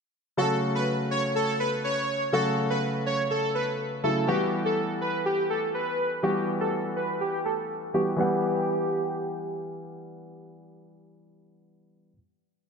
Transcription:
0, 0, Header, 1, 3, 480
1, 0, Start_track
1, 0, Tempo, 487805
1, 373, Time_signature, 4, 2, 24, 8
1, 12493, End_track
2, 0, Start_track
2, 0, Title_t, "Supersaw synth"
2, 0, Program_c, 0, 81
2, 373, Note_on_c, 0, 69, 92
2, 456, Note_off_c, 0, 69, 0
2, 739, Note_on_c, 0, 71, 68
2, 814, Note_off_c, 0, 71, 0
2, 1092, Note_on_c, 0, 73, 78
2, 1249, Note_off_c, 0, 73, 0
2, 1332, Note_on_c, 0, 69, 76
2, 1490, Note_off_c, 0, 69, 0
2, 1572, Note_on_c, 0, 71, 73
2, 1656, Note_off_c, 0, 71, 0
2, 1812, Note_on_c, 0, 73, 79
2, 2157, Note_off_c, 0, 73, 0
2, 2292, Note_on_c, 0, 69, 96
2, 2376, Note_off_c, 0, 69, 0
2, 2658, Note_on_c, 0, 71, 68
2, 2733, Note_off_c, 0, 71, 0
2, 3013, Note_on_c, 0, 73, 76
2, 3170, Note_off_c, 0, 73, 0
2, 3252, Note_on_c, 0, 69, 77
2, 3410, Note_off_c, 0, 69, 0
2, 3493, Note_on_c, 0, 71, 74
2, 3576, Note_off_c, 0, 71, 0
2, 3971, Note_on_c, 0, 69, 75
2, 4055, Note_off_c, 0, 69, 0
2, 4212, Note_on_c, 0, 67, 92
2, 4295, Note_off_c, 0, 67, 0
2, 4579, Note_on_c, 0, 69, 73
2, 4653, Note_off_c, 0, 69, 0
2, 4932, Note_on_c, 0, 71, 78
2, 5090, Note_off_c, 0, 71, 0
2, 5172, Note_on_c, 0, 67, 83
2, 5330, Note_off_c, 0, 67, 0
2, 5412, Note_on_c, 0, 69, 73
2, 5495, Note_off_c, 0, 69, 0
2, 5652, Note_on_c, 0, 71, 79
2, 5997, Note_off_c, 0, 71, 0
2, 6132, Note_on_c, 0, 67, 96
2, 6216, Note_off_c, 0, 67, 0
2, 6500, Note_on_c, 0, 69, 70
2, 6574, Note_off_c, 0, 69, 0
2, 6852, Note_on_c, 0, 71, 77
2, 7010, Note_off_c, 0, 71, 0
2, 7092, Note_on_c, 0, 67, 80
2, 7249, Note_off_c, 0, 67, 0
2, 7332, Note_on_c, 0, 69, 74
2, 7416, Note_off_c, 0, 69, 0
2, 7812, Note_on_c, 0, 67, 78
2, 7896, Note_off_c, 0, 67, 0
2, 8053, Note_on_c, 0, 67, 89
2, 9453, Note_off_c, 0, 67, 0
2, 12493, End_track
3, 0, Start_track
3, 0, Title_t, "Grand piano"
3, 0, Program_c, 1, 0
3, 367, Note_on_c, 1, 49, 60
3, 370, Note_on_c, 1, 54, 56
3, 373, Note_on_c, 1, 57, 53
3, 377, Note_on_c, 1, 66, 67
3, 2251, Note_off_c, 1, 49, 0
3, 2253, Note_off_c, 1, 54, 0
3, 2255, Note_off_c, 1, 57, 0
3, 2257, Note_off_c, 1, 66, 0
3, 2287, Note_on_c, 1, 49, 61
3, 2291, Note_on_c, 1, 54, 56
3, 2294, Note_on_c, 1, 57, 56
3, 2297, Note_on_c, 1, 66, 69
3, 3936, Note_off_c, 1, 49, 0
3, 3938, Note_off_c, 1, 54, 0
3, 3940, Note_off_c, 1, 57, 0
3, 3941, Note_off_c, 1, 66, 0
3, 3970, Note_on_c, 1, 49, 46
3, 3972, Note_on_c, 1, 54, 40
3, 3973, Note_on_c, 1, 57, 39
3, 3974, Note_on_c, 1, 64, 50
3, 4207, Note_on_c, 1, 52, 63
3, 4211, Note_off_c, 1, 49, 0
3, 4211, Note_on_c, 1, 55, 57
3, 4212, Note_off_c, 1, 54, 0
3, 4213, Note_off_c, 1, 57, 0
3, 4213, Note_off_c, 1, 64, 0
3, 4215, Note_on_c, 1, 59, 56
3, 4218, Note_on_c, 1, 66, 72
3, 6092, Note_off_c, 1, 52, 0
3, 6093, Note_off_c, 1, 55, 0
3, 6095, Note_off_c, 1, 59, 0
3, 6097, Note_off_c, 1, 66, 0
3, 6129, Note_on_c, 1, 52, 63
3, 6131, Note_on_c, 1, 55, 59
3, 6135, Note_on_c, 1, 59, 54
3, 6138, Note_on_c, 1, 66, 70
3, 7777, Note_off_c, 1, 52, 0
3, 7778, Note_off_c, 1, 55, 0
3, 7780, Note_off_c, 1, 59, 0
3, 7782, Note_off_c, 1, 66, 0
3, 7811, Note_on_c, 1, 52, 44
3, 7813, Note_on_c, 1, 55, 43
3, 7815, Note_on_c, 1, 59, 41
3, 7816, Note_on_c, 1, 66, 48
3, 8019, Note_off_c, 1, 52, 0
3, 8032, Note_off_c, 1, 55, 0
3, 8034, Note_on_c, 1, 52, 77
3, 8046, Note_off_c, 1, 59, 0
3, 8047, Note_on_c, 1, 55, 68
3, 8054, Note_off_c, 1, 66, 0
3, 8060, Note_on_c, 1, 59, 69
3, 8074, Note_on_c, 1, 78, 83
3, 11907, Note_off_c, 1, 52, 0
3, 11920, Note_off_c, 1, 55, 0
3, 11933, Note_off_c, 1, 59, 0
3, 11946, Note_off_c, 1, 78, 0
3, 12493, End_track
0, 0, End_of_file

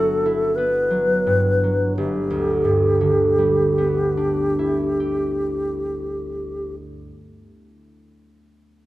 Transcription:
0, 0, Header, 1, 3, 480
1, 0, Start_track
1, 0, Key_signature, 1, "major"
1, 0, Tempo, 1252610
1, 217, Tempo, 1405152
1, 699, Time_signature, 3, 2, 24, 8
1, 3050, End_track
2, 0, Start_track
2, 0, Title_t, "Alto flute"
2, 0, Program_c, 0, 73
2, 0, Note_on_c, 0, 69, 49
2, 213, Note_on_c, 0, 71, 44
2, 219, Note_off_c, 0, 69, 0
2, 695, Note_off_c, 0, 71, 0
2, 697, Note_on_c, 0, 67, 31
2, 2328, Note_off_c, 0, 67, 0
2, 3050, End_track
3, 0, Start_track
3, 0, Title_t, "Harp"
3, 0, Program_c, 1, 46
3, 0, Note_on_c, 1, 31, 33
3, 0, Note_on_c, 1, 43, 24
3, 0, Note_on_c, 1, 54, 23
3, 0, Note_on_c, 1, 55, 27
3, 0, Note_on_c, 1, 59, 25
3, 0, Note_on_c, 1, 64, 23
3, 0, Note_on_c, 1, 66, 25
3, 94, Note_off_c, 1, 64, 0
3, 98, Note_on_c, 1, 64, 25
3, 216, Note_off_c, 1, 59, 0
3, 220, Note_on_c, 1, 59, 22
3, 329, Note_off_c, 1, 54, 0
3, 333, Note_on_c, 1, 54, 22
3, 452, Note_off_c, 1, 43, 0
3, 456, Note_on_c, 1, 43, 20
3, 578, Note_off_c, 1, 54, 0
3, 582, Note_on_c, 1, 54, 17
3, 609, Note_off_c, 1, 55, 0
3, 694, Note_off_c, 1, 31, 0
3, 699, Note_on_c, 1, 31, 23
3, 719, Note_off_c, 1, 43, 0
3, 720, Note_off_c, 1, 54, 0
3, 720, Note_off_c, 1, 66, 0
3, 811, Note_on_c, 1, 38, 25
3, 928, Note_on_c, 1, 43, 21
3, 1051, Note_on_c, 1, 50, 21
3, 1180, Note_on_c, 1, 55, 21
3, 1311, Note_off_c, 1, 59, 0
3, 1315, Note_on_c, 1, 59, 20
3, 1443, Note_off_c, 1, 64, 0
3, 1449, Note_on_c, 1, 62, 19
3, 1591, Note_on_c, 1, 64, 19
3, 1731, Note_on_c, 1, 67, 17
3, 2330, Note_off_c, 1, 31, 0
3, 2442, Note_off_c, 1, 38, 0
3, 2559, Note_off_c, 1, 43, 0
3, 2635, Note_off_c, 1, 67, 0
3, 2637, Note_off_c, 1, 62, 0
3, 2637, Note_off_c, 1, 64, 0
3, 2638, Note_off_c, 1, 50, 0
3, 2638, Note_off_c, 1, 55, 0
3, 2639, Note_off_c, 1, 59, 0
3, 3050, End_track
0, 0, End_of_file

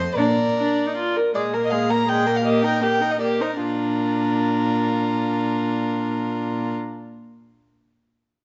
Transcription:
0, 0, Header, 1, 5, 480
1, 0, Start_track
1, 0, Key_signature, -2, "major"
1, 0, Tempo, 389610
1, 217, Time_signature, 3, 2, 24, 8
1, 1656, Tempo, 371287
1, 4056, Tempo, 397351
1, 10389, End_track
2, 0, Start_track
2, 0, Title_t, "Violin"
2, 0, Program_c, 0, 40
2, 0, Note_on_c, 0, 72, 51
2, 206, Note_on_c, 0, 70, 52
2, 225, Note_off_c, 0, 72, 0
2, 1414, Note_off_c, 0, 70, 0
2, 1662, Note_on_c, 0, 74, 52
2, 1765, Note_off_c, 0, 74, 0
2, 2043, Note_on_c, 0, 75, 51
2, 2128, Note_on_c, 0, 77, 57
2, 2147, Note_off_c, 0, 75, 0
2, 2382, Note_on_c, 0, 82, 64
2, 2401, Note_off_c, 0, 77, 0
2, 2618, Note_on_c, 0, 79, 67
2, 2637, Note_off_c, 0, 82, 0
2, 2974, Note_on_c, 0, 77, 46
2, 2993, Note_off_c, 0, 79, 0
2, 3088, Note_on_c, 0, 75, 59
2, 3107, Note_off_c, 0, 77, 0
2, 3321, Note_off_c, 0, 75, 0
2, 3332, Note_on_c, 0, 79, 61
2, 3559, Note_off_c, 0, 79, 0
2, 3566, Note_on_c, 0, 79, 59
2, 3943, Note_on_c, 0, 75, 51
2, 3963, Note_off_c, 0, 79, 0
2, 4042, Note_off_c, 0, 75, 0
2, 4050, Note_on_c, 0, 74, 54
2, 4147, Note_off_c, 0, 74, 0
2, 4307, Note_on_c, 0, 72, 42
2, 4403, Note_off_c, 0, 72, 0
2, 4563, Note_on_c, 0, 70, 45
2, 8326, Note_off_c, 0, 70, 0
2, 10389, End_track
3, 0, Start_track
3, 0, Title_t, "Violin"
3, 0, Program_c, 1, 40
3, 0, Note_on_c, 1, 72, 47
3, 206, Note_off_c, 1, 72, 0
3, 221, Note_on_c, 1, 74, 44
3, 1398, Note_off_c, 1, 74, 0
3, 1669, Note_on_c, 1, 68, 44
3, 1908, Note_on_c, 1, 70, 39
3, 1927, Note_off_c, 1, 68, 0
3, 2132, Note_on_c, 1, 68, 37
3, 2151, Note_off_c, 1, 70, 0
3, 2373, Note_on_c, 1, 70, 33
3, 2392, Note_off_c, 1, 68, 0
3, 2591, Note_off_c, 1, 70, 0
3, 2599, Note_on_c, 1, 68, 37
3, 2852, Note_on_c, 1, 70, 35
3, 2871, Note_off_c, 1, 68, 0
3, 3074, Note_off_c, 1, 70, 0
3, 3082, Note_on_c, 1, 67, 42
3, 3334, Note_on_c, 1, 70, 39
3, 3354, Note_off_c, 1, 67, 0
3, 3577, Note_on_c, 1, 67, 37
3, 3597, Note_off_c, 1, 70, 0
3, 3811, Note_on_c, 1, 70, 33
3, 3831, Note_off_c, 1, 67, 0
3, 4060, Note_off_c, 1, 70, 0
3, 4070, Note_on_c, 1, 67, 39
3, 4309, Note_on_c, 1, 70, 34
3, 4327, Note_off_c, 1, 67, 0
3, 4555, Note_off_c, 1, 70, 0
3, 4572, Note_on_c, 1, 65, 36
3, 8331, Note_off_c, 1, 65, 0
3, 10389, End_track
4, 0, Start_track
4, 0, Title_t, "Viola"
4, 0, Program_c, 2, 41
4, 208, Note_on_c, 2, 62, 41
4, 440, Note_off_c, 2, 62, 0
4, 709, Note_on_c, 2, 62, 40
4, 1067, Note_on_c, 2, 63, 38
4, 1085, Note_off_c, 2, 62, 0
4, 1175, Note_off_c, 2, 63, 0
4, 1182, Note_on_c, 2, 65, 43
4, 1430, Note_on_c, 2, 70, 38
4, 1448, Note_off_c, 2, 65, 0
4, 1661, Note_off_c, 2, 70, 0
4, 1668, Note_on_c, 2, 56, 41
4, 1907, Note_on_c, 2, 58, 40
4, 1926, Note_off_c, 2, 56, 0
4, 2141, Note_on_c, 2, 56, 37
4, 2160, Note_off_c, 2, 58, 0
4, 2379, Note_on_c, 2, 58, 35
4, 2398, Note_off_c, 2, 56, 0
4, 2601, Note_off_c, 2, 58, 0
4, 2609, Note_on_c, 2, 56, 41
4, 2840, Note_on_c, 2, 58, 35
4, 2859, Note_off_c, 2, 56, 0
4, 3065, Note_off_c, 2, 58, 0
4, 3072, Note_on_c, 2, 58, 37
4, 3319, Note_on_c, 2, 63, 37
4, 3339, Note_off_c, 2, 58, 0
4, 3552, Note_on_c, 2, 58, 36
4, 3571, Note_off_c, 2, 63, 0
4, 3804, Note_on_c, 2, 63, 35
4, 3824, Note_off_c, 2, 58, 0
4, 4050, Note_off_c, 2, 63, 0
4, 4057, Note_on_c, 2, 58, 37
4, 4301, Note_on_c, 2, 63, 33
4, 4319, Note_off_c, 2, 58, 0
4, 4534, Note_off_c, 2, 63, 0
4, 4542, Note_on_c, 2, 62, 34
4, 8315, Note_off_c, 2, 62, 0
4, 10389, End_track
5, 0, Start_track
5, 0, Title_t, "Cello"
5, 0, Program_c, 3, 42
5, 0, Note_on_c, 3, 41, 49
5, 135, Note_off_c, 3, 41, 0
5, 208, Note_on_c, 3, 46, 44
5, 619, Note_off_c, 3, 46, 0
5, 1660, Note_on_c, 3, 46, 49
5, 4258, Note_off_c, 3, 46, 0
5, 4552, Note_on_c, 3, 46, 41
5, 8320, Note_off_c, 3, 46, 0
5, 10389, End_track
0, 0, End_of_file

